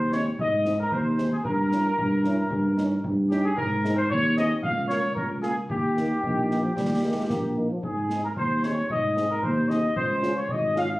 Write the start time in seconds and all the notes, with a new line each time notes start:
Already playing: D#2 C5
0.12 G#3 C4 D#4 C#5, snare
0.39 G#2 D#5, concert bass drum
0.65 G#3 C4 D#4, snare
0.80 A#4
0.91 D#2 C5, concert bass drum
1.18 G#3 C4 D#4, snare
1.32 G#4
1.44 G2 A#4, concert bass drum
1.72 C#4 E4, snare
1.98 G2, concert bass drum
2.24 C#4 E4, snare
2.50 G2, concert bass drum
2.77 C#4 D#4, snare
3.04 G2, concert bass drum
3.30 C#4 D#4 G4, snare
3.44 G#4
3.56 G#2 A#4, concert bass drum
3.84 C4 D#4 G#4, snare
3.96 C5
4.10 D#2 C#5, concert bass drum
4.37 C4 D#4 G#4 D#5, snare
4.63 C#2 F5, concert bass drum
4.88 A#3 F4 A#4 C#5, snare
5.15 C#2 A#4, concert bass drum
5.42 A#3 F4 G#4 A#4, snare
5.69 D#2 G4, concert bass drum
5.96 A#3 D#4 A#4, snare
6.23 A#1 D#3, concert bass drum
6.49 A#3 D#4 A#4, snare
6.63 F3
6.76 D#2 G3, concert bass drum, snare
7.03 G#3 A#3 D#4 A#4
7.29 A#1 A#3, concert bass drum, snare
7.56 A#3 D#4 A#4
7.71 F3
7.83 G#2 G#4, concert bass drum
8.10 C4 D#4 G#4, snare
8.23 A#4
8.36 D#2 C5, concert bass drum
8.63 C4 D#4 G#4 C#5, snare
8.90 G#2 D#5, concert bass drum
9.17 C4 D#4 G#4, snare
9.30 A#4
9.43 D#2 C5, concert bass drum
9.68 C4 D#4 G#4 D#5, snare
9.96 C#2 C5, concert bass drum
10.22 C#4 F4 G#4, snare
10.37 C#5
10.48 G#1 D#5, concert bass drum
10.75 C#4 F4 G#4 F5, snare